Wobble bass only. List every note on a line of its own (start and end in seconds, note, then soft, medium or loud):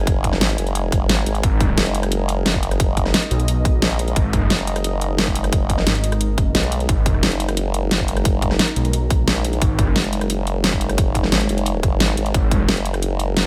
0.00 0.40 F#1 loud
0.41 0.57 G#1 loud
0.58 0.91 F#1 loud
0.92 1.08 F#1 medium
1.09 1.25 G#1 medium
1.26 1.42 G#1 loud
1.78 3.13 F#1 loud
3.82 4.15 A#1 medium
4.50 5.85 F#1 loud
6.55 6.88 B1 loud
7.23 8.58 F#1 loud
9.28 9.60 A#1 loud
9.96 11.31 F#1 loud
11.32 11.48 G#1 loud
11.49 11.82 F#1 medium
11.83 11.99 F#1 medium
12.00 12.16 G#1 medium
12.17 12.33 G#1 loud
12.68 13.47 F#1 loud